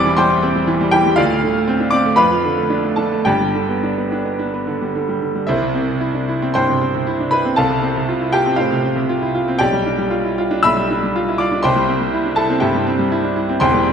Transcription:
Already playing: E1 E2 E3 G3 C4 E4 D5 E5 C6 D6 E6
0.06 E3
0.17 G3 C5 G5 C6
0.30 E4
0.43 C4
0.56 G3
0.67 E3
0.81 G3
0.91 E3 G4 G5
1.06 G3
1.16 D2 F4 D5 F5
1.30 A2
1.43 D3
1.55 A3
1.68 C4
1.80 D4
1.91 C4 D5 D6
2.05 A3
2.16 F2 B4 F5 B5
2.31 F3
2.44 D3
2.57 A3
2.70 D4
2.84 A3
2.96 D4 A4 A5
3.12 A3
3.25 G1 G2 G4 D5 G5
3.41 G3
3.55 D3
3.69 B3
3.83 D4
3.98 B3
4.12 D4
4.25 B3
4.39 D4
4.54 B3
4.67 D3
4.82 G3
4.95 D3
5.09 G3
5.22 D3
5.35 G3
5.47 C2 E4 C5 E5
5.62 C3
5.74 C4
5.88 C3
6.00 E4
6.14 D4
6.28 E4
6.42 C4
6.54 G2 C5 G5 C6
6.69 C3
6.81 C4
6.94 C3
7.07 E4
7.20 D4
7.31 E4 B4 B5
7.45 C4
7.56 C2 A4 F5 A5
7.70 C3
7.83 C4
7.96 C3
8.09 F4
8.21 E4
8.32 F4 G4 G5
8.46 C4
8.56 A2 F4 C5 F5
8.70 C3
8.83 C4
8.96 C3
9.09 F4
9.22 E4
9.35 F4
9.48 C4
9.59 B1 G4 D5 G5
9.73 G3
9.86 D4
9.98 G3
10.10 F4
10.24 E4
10.38 F4
10.51 D4
10.63 B1 E5 B5 E6
10.77 G3
10.91 D4
11.03 G3
11.16 F4
11.28 E4
11.38 F4 D5 D6
11.52 D4
11.63 C2 C5 G5 C6
11.76 G3
11.88 C4
12.01 G3
12.14 E4
12.26 D4
12.36 E4 A4 A5
12.50 C4
12.60 G2 G4 E5 G5
12.75 G3
12.87 C4
12.99 G3
13.12 E4
13.24 D4
13.36 E4
13.49 C4
13.60 E1 E2 C5 G5 C6
13.74 G3
13.87 C4

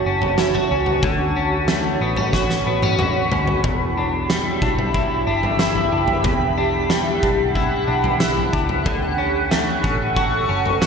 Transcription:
Already playing: A3 F#4 C#5 A5
0.06 F#1 C#4
0.22 floor tom
0.38 E4, snare
0.54 F#4, floor tom
0.71 C#2 C#4
0.86 floor tom
1.03 D2 D3 B5, kick, floor tom
1.36 C#4
1.68 A3, snare
2.01 A1 B3
2.17 C#4, floor tom
2.33 F#4, kick, snare
2.50 snare
2.66 A1 B3
2.82 C#4, high tom
2.99 F#4, mid tom
3.31 D2 C#4, floor tom
3.47 floor tom
3.64 E1 E2 G4 E5, kick, floor tom
3.97 D4
4.29 G3, snare
4.62 B1 D4, kick
4.79 floor tom
4.94 E4, kick
5.27 G1 D4
5.43 floor tom
5.59 E4, snare
5.75 floor tom
5.92 F#1 D4
6.08 floor tom
6.24 E1 E2 F#5, kick, floor tom
6.58 D4
6.90 G3, snare
7.23 B1 D4, kick
7.55 E4, kick
7.88 B1 D4
8.04 floor tom
8.20 E4, snare
8.37 floor tom
8.53 C#2 D4, kick
8.69 floor tom
8.86 D2 D3 A4 C#6, kick, floor tom
9.18 C#4
9.51 A3, snare
9.84 A1 C#4, kick
10.16 F#4, kick
10.49 F#1 C#4
10.66 floor tom
10.81 F#4, snare

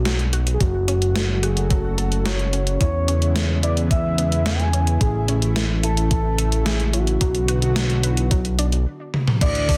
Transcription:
Already playing: B1 F#4
0.05 F#3, snare, closed hi-hat
0.19 closed hi-hat
0.33 F#4, closed hi-hat
0.47 closed hi-hat
0.54 G#4
0.60 F#1 C#3 F#3 A3 F#4, kick, closed hi-hat
0.88 C#4, closed hi-hat
1.02 closed hi-hat
1.16 F#3, snare, closed hi-hat
1.43 F#4 G#4, closed hi-hat
1.57 closed hi-hat
1.70 F#3 A4, kick, closed hi-hat
1.98 A4, closed hi-hat
2.12 closed hi-hat
2.26 F#3 C#5, snare, closed hi-hat
2.39 closed hi-hat
2.53 C#4, closed hi-hat
2.67 closed hi-hat
2.81 E2 E3 G#3 B3 E4 C#5, kick, closed hi-hat
3.08 C#4, closed hi-hat
3.22 closed hi-hat
3.36 E3, snare, closed hi-hat
3.63 E4 D5, closed hi-hat
3.77 closed hi-hat
3.91 E3 E5, kick, closed hi-hat
4.18 B3, closed hi-hat
4.32 closed hi-hat
4.46 E3 G#5, snare, closed hi-hat
4.60 closed hi-hat
4.73 C#4, closed hi-hat
4.87 closed hi-hat
5.01 A1 E3 A3 G#4, kick, closed hi-hat
5.28 C#4, closed hi-hat
5.42 closed hi-hat
5.56 E3, snare, closed hi-hat
5.83 E4 A4, closed hi-hat
5.97 closed hi-hat
6.11 E3 A4, kick, closed hi-hat
6.38 A4, closed hi-hat
6.52 closed hi-hat
6.66 E3 G#4, snare, closed hi-hat
6.80 closed hi-hat
6.93 C#4 F#4, closed hi-hat
7.07 closed hi-hat
7.21 B1 D3 F#3 B3 F#4, kick, closed hi-hat
7.35 closed hi-hat
7.48 F#4, closed hi-hat
7.62 closed hi-hat
7.76 F#3, snare, closed hi-hat
7.90 closed hi-hat
8.03 B4, closed hi-hat
8.15 E4, closed hi-hat
8.31 F#3, kick, closed hi-hat
8.45 closed hi-hat
8.59 D4, closed hi-hat
8.72 closed hi-hat
9.14 high tom
9.28 mid tom
9.41 D2 D3 E3 F#3 A3 E4 D5, kick, closed hi-hat, crash
9.55 closed hi-hat
9.69 A3, kick, open hi-hat

